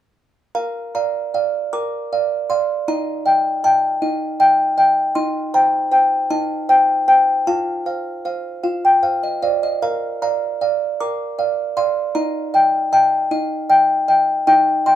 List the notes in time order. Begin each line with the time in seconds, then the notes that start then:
0.55 A#4 F5 A#5
0.95 D5 F5 A#5
1.34 D5 F5
1.73 A#4 A#5 D6
2.12 D5 F5
2.50 D5 F5 C6
2.88 D#4 D#5 A#5
3.26 D#5 G5
3.64 D#5 G5 A5
4.02 D#4 D#5
4.40 D#5 G5
4.78 D#5 G5
5.15 D#4 D#5 C6
5.54 C5 G5 A#5
5.92 C5 G5
6.30 D#4 D#5 A5
6.69 C5 G5
7.08 C5 G5
7.47 F4 F5 A5
7.86 C5 F5
8.25 C5 F5
8.63 F4 F5
8.85 G5
9.03 C5 F5
9.23 D#5
9.42 C5 D5 F5
9.63 D#5
9.82 A#4 F5 A#5
10.22 D5 F5 A#5
10.61 D5 F5
11.00 A#4 A#5 D6
11.39 D5 F5
11.77 D5 F5 C6
12.15 D#4 D#5 A#5
12.54 D#5 G5
12.93 D#5 G5 A5
13.31 D#4 D#5
13.70 D#5 G5
14.08 D#5 G5
14.47 D#4 D#5 G5
14.86 D#5 G5 C6